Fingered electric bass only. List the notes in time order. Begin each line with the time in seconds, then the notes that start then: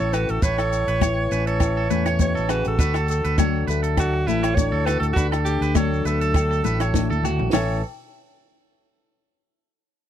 0.00 A1
0.29 A1
0.43 A1
0.87 A1
1.32 A1
1.91 E2
2.37 A1
2.66 A1
2.79 D2
3.25 D2
3.67 D2
4.27 A1
4.72 D2
5.01 D2
5.16 D2
5.61 D2
6.05 D2
6.65 A1
7.11 D2
7.40 A#1
7.53 A1